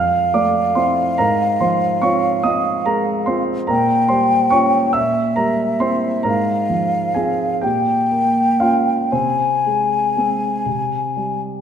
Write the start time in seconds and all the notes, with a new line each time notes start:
Already playing: F2 F5 F6
0.34 A3 D5 D6
0.75 C4 E4 C5 C6
1.18 G#2 A#4 A#5
1.60 F3 C5 C6
2.02 C4 F4 C#5 C#6
2.43 C4 F4 D#5 D#6
2.86 G#3 A#4 A#5
3.26 C4 F4 C5 C6
3.67 A#2 A#4 G5 A#5
4.08 G3 C5 C6
4.50 C#4 F4 C#5 C#6
4.93 A#2 E5 E6
5.36 G3 A#4 A#5
5.80 C4 E4 C5 C6
6.23 G#2 A#4 A#5
6.28 F5
6.70 F3
7.14 C4 F4 G#4 G#5
7.62 A#2 G4 G5
8.11 A#3
8.60 A#3 C#4 F4 F5
9.12 C3 C4 C5 G#5
9.66 G#3
10.17 G#3 C4
10.66 C3
11.17 G3